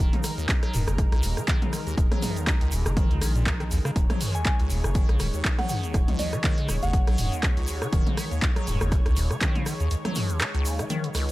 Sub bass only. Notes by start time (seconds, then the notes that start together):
0.00 D#1
0.74 D#1
0.88 F#1
1.12 A#1
1.23 D#1
1.97 D#1
2.72 D#1
2.86 F#1
3.11 C#2
3.22 A#1
3.96 D#1
4.70 D#1
4.84 F#1
5.09 A#1
5.20 D#1
5.94 D#1
6.69 D#1
6.83 F#1
7.07 A#1
7.18 D#1
7.93 D#1
8.67 D#1
8.81 F#1
9.06 A#1
9.17 D#1